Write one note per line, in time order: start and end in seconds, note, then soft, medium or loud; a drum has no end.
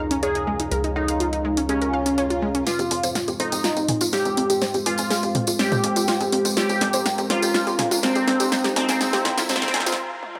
0.00 0.69 C#2 medium
0.00 2.72 F2 medium
0.00 2.72 C3 medium
0.00 0.13 D#4 loud
0.00 0.13 D#4 medium
0.00 2.63 G#4 medium
0.00 2.63 C#5 medium
0.00 2.63 F5 medium
0.00 2.63 A#5 medium
0.11 0.16 C#4 loud
0.11 closed hi-hat medium
0.23 0.86 G#4 medium
0.23 0.86 G#4 loud
0.23 0.26 C#5 medium
0.23 closed hi-hat medium
0.35 0.38 D#4 medium
0.35 closed hi-hat soft
0.47 0.53 G#3 medium
0.60 0.65 D#4 medium
0.60 closed hi-hat medium
0.72 2.64 C#2 medium
0.72 0.77 A#4 medium
0.72 closed hi-hat medium
0.84 0.89 D#4 medium
0.84 closed hi-hat soft
0.96 1.60 D#4 loud
0.96 1.60 D#4 medium
0.96 1.04 F5 medium
1.08 1.14 F5 medium
1.08 closed hi-hat medium
1.20 1.26 F4 medium
1.20 closed hi-hat medium
1.33 1.36 D#4 medium
1.33 closed hi-hat soft
1.45 1.50 G#3 medium
1.57 1.60 C#4 medium
1.57 closed hi-hat medium
1.69 1.74 G#3 medium
1.69 2.57 C#4 medium
1.69 2.57 C#4 loud
1.69 closed hi-hat medium
1.69 swell medium
1.82 1.87 A#4 medium
1.82 closed hi-hat soft
1.93 2.02 F5 medium
2.06 2.11 C#4 medium
2.06 closed hi-hat medium
2.18 2.23 C#4 loud
2.18 closed hi-hat medium
2.30 2.36 F4 medium
2.30 closed hi-hat soft
2.42 2.48 G#3 medium
2.55 2.60 C#4 medium
2.55 closed hi-hat medium
2.67 9.94 G#3 medium
2.67 3.30 F4 medium
2.67 2.72 F4 medium
2.67 3.30 F4 loud
2.67 9.94 C5 medium
2.67 9.94 F5 medium
2.67 6.53 C6 medium
2.67 snare soft
2.67 closed hi-hat medium
2.67 tambourine medium
2.67 riser medium
2.79 2.89 F2 medium
2.79 2.84 G4 medium
2.79 closed hi-hat soft
2.79 tambourine soft
2.91 3.02 F2 loud
2.91 2.99 G#5 medium
2.91 open hi-hat loud
3.03 3.13 F2 medium
3.03 3.11 C5 loud
3.03 closed hi-hat medium
3.03 tambourine medium
3.15 3.19 F5 medium
3.15 snare soft
3.15 closed hi-hat medium
3.15 tambourine medium
3.28 3.38 F2 medium
3.28 3.31 G4 medium
3.28 closed hi-hat soft
3.28 tambourine soft
3.40 3.50 F2 medium
3.40 4.03 D#4 medium
3.40 4.03 D#4 loud
3.40 3.45 C5 medium
3.40 open hi-hat medium
3.52 3.62 F2 medium
3.52 3.57 G4 medium
3.52 closed hi-hat medium
3.52 tambourine medium
3.64 3.70 F4 medium
3.64 snare medium
3.64 closed hi-hat medium
3.64 tambourine medium
3.76 3.87 F2 medium
3.76 3.82 G4 medium
3.76 closed hi-hat soft
3.76 tambourine soft
3.88 3.99 F2 loud
3.88 3.97 G#5 medium
3.88 mid tom medium
3.88 open hi-hat loud
4.01 4.11 F2 medium
4.01 4.06 F4 loud
4.01 closed hi-hat medium
4.01 tambourine medium
4.13 4.77 G4 loud
4.13 4.16 F5 medium
4.13 snare medium
4.13 closed hi-hat medium
4.13 tambourine medium
4.25 4.35 F2 medium
4.25 4.29 G4 medium
4.25 closed hi-hat soft
4.25 tambourine soft
4.37 4.48 F2 loud
4.37 4.43 C4 medium
4.37 open hi-hat medium
4.50 4.60 F2 medium
4.50 4.55 G4 medium
4.50 closed hi-hat medium
4.50 tambourine medium
4.61 4.67 C5 medium
4.61 snare medium
4.61 closed hi-hat medium
4.61 tambourine medium
4.74 4.84 F2 medium
4.74 4.79 G4 medium
4.74 closed hi-hat soft
4.74 tambourine soft
4.86 4.97 F2 loud
4.86 5.50 F4 loud
4.86 5.50 F4 medium
4.86 4.94 G#5 medium
4.86 open hi-hat loud
4.98 5.09 F2 medium
4.98 5.04 G#5 medium
4.98 closed hi-hat medium
4.98 tambourine medium
5.11 5.16 G#4 medium
5.11 snare medium
5.11 closed hi-hat medium
5.11 tambourine medium
5.23 5.33 F2 medium
5.23 5.26 G4 medium
5.23 closed hi-hat soft
5.23 tambourine soft
5.35 5.45 F2 loud
5.35 5.40 C4 medium
5.35 mid tom medium
5.35 open hi-hat medium
5.47 5.57 F2 medium
5.47 5.50 F4 medium
5.47 closed hi-hat medium
5.47 tambourine medium
5.59 5.65 C4 medium
5.59 6.47 G4 medium
5.59 6.47 G4 loud
5.59 snare medium
5.59 closed hi-hat medium
5.59 tambourine medium
5.72 5.82 F2 medium
5.72 5.77 C5 medium
5.72 closed hi-hat soft
5.72 mid tom medium
5.72 tambourine soft
5.84 5.94 F2 loud
5.84 5.92 G#5 medium
5.84 open hi-hat loud
5.96 6.06 F2 medium
5.96 6.01 F4 medium
5.96 closed hi-hat medium
5.96 tambourine medium
6.08 6.13 F4 loud
6.08 snare medium
6.08 closed hi-hat medium
6.08 tambourine medium
6.21 6.31 F2 medium
6.21 6.26 G#4 medium
6.21 closed hi-hat soft
6.21 tambourine soft
6.32 6.43 F2 loud
6.32 6.38 C4 medium
6.32 open hi-hat loud
6.45 6.55 F2 medium
6.45 6.50 F4 medium
6.45 closed hi-hat medium
6.45 tambourine medium
6.57 6.62 F4 medium
6.57 7.20 G4 loud
6.57 7.21 G4 loud
6.57 9.95 A#5 medium
6.57 snare medium
6.57 closed hi-hat medium
6.57 tambourine medium
6.69 6.79 F2 medium
6.69 6.75 G4 medium
6.69 closed hi-hat soft
6.69 tambourine soft
6.81 6.92 F2 loud
6.81 6.89 G#5 medium
6.81 snare medium
6.81 open hi-hat loud
6.93 7.04 F2 medium
6.93 7.01 C5 loud
6.93 closed hi-hat medium
6.93 tambourine medium
7.06 7.09 F5 medium
7.06 snare medium
7.06 closed hi-hat medium
7.06 tambourine medium
7.18 7.28 F2 medium
7.18 7.21 G4 medium
7.18 closed hi-hat soft
7.18 tambourine soft
7.30 7.41 F2 loud
7.30 7.94 F4 loud
7.30 7.94 F4 medium
7.30 7.35 C5 medium
7.30 snare medium
7.30 open hi-hat medium
7.42 7.53 F2 medium
7.42 7.48 G4 medium
7.42 closed hi-hat medium
7.42 tambourine medium
7.54 7.60 F4 medium
7.54 snare medium
7.54 closed hi-hat medium
7.54 tambourine medium
7.67 7.77 F2 medium
7.67 7.72 G4 medium
7.67 closed hi-hat soft
7.67 tambourine soft
7.79 7.89 F2 loud
7.79 7.87 G#5 medium
7.79 snare medium
7.79 mid tom medium
7.79 open hi-hat loud
7.91 8.01 F2 medium
7.91 7.96 F4 loud
7.91 closed hi-hat medium
7.91 tambourine medium
8.03 8.67 C4 loud
8.03 8.06 F5 medium
8.03 snare medium
8.03 closed hi-hat medium
8.03 tambourine medium
8.15 8.26 F2 medium
8.15 8.19 G4 medium
8.15 closed hi-hat soft
8.15 tambourine soft
8.28 8.38 F2 loud
8.28 8.33 C4 medium
8.28 snare medium
8.28 open hi-hat loud
8.40 8.50 F2 medium
8.40 8.45 G4 medium
8.40 closed hi-hat medium
8.40 tambourine medium
8.52 8.57 C5 medium
8.52 snare medium
8.52 closed hi-hat medium
8.52 tambourine medium
8.64 8.74 F2 medium
8.64 8.70 G4 medium
8.64 snare medium
8.64 closed hi-hat soft
8.64 tambourine soft
8.76 8.87 F2 loud
8.76 9.40 C4 loud
8.76 8.84 G#5 medium
8.76 snare medium
8.76 open hi-hat loud
8.89 8.99 F2 medium
8.89 8.94 G#5 medium
8.89 snare medium
8.89 closed hi-hat medium
8.89 tambourine medium
9.01 9.06 G#4 medium
9.01 snare loud
9.01 closed hi-hat medium
9.01 tambourine medium
9.13 9.23 F2 medium
9.13 9.16 G4 medium
9.13 snare medium
9.13 closed hi-hat soft
9.13 tambourine soft
9.25 9.36 F2 medium
9.25 9.31 C4 medium
9.25 snare loud
9.25 mid tom medium
9.25 open hi-hat loud
9.38 9.48 F2 medium
9.38 9.41 F4 medium
9.38 snare medium
9.38 closed hi-hat medium
9.38 tambourine medium
9.49 9.98 C4 loud
9.49 9.98 C4 medium
9.49 9.55 C4 medium
9.49 snare loud
9.49 closed hi-hat medium
9.49 tambourine medium
9.56 snare medium
9.62 9.72 F2 medium
9.62 9.67 C5 medium
9.62 snare medium
9.62 closed hi-hat soft
9.62 mid tom medium
9.62 tambourine soft
9.68 snare medium
9.74 9.84 F2 loud
9.74 9.82 G#5 medium
9.74 snare loud
9.74 open hi-hat loud
9.80 snare medium
9.86 9.96 F2 medium
9.86 9.92 F4 medium
9.86 snare loud
9.86 closed hi-hat medium
9.86 tambourine medium
9.92 snare medium
10.23 high tom medium
10.35 mid tom medium